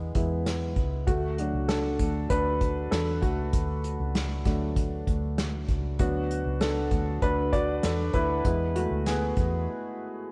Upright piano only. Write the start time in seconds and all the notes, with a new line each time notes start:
Already playing: G#3 B3 E4 G#4
0.15 G#3 B3 E4
1.07 A3 F#4
1.39 F#3 A3 D4
1.68 D4 A4
2.30 D4 B4
2.91 D4 A4
3.21 A3 F#4
4.45 F#3 A3 D4
5.99 F#3 B3 D4 F#4
6.61 D4 A4
7.22 D4 B4
7.53 F#4 D5
7.83 D4 A4
8.14 E4 B4
8.46 G#3 B3 E4
8.75 A3 F#4
9.06 B3 G#4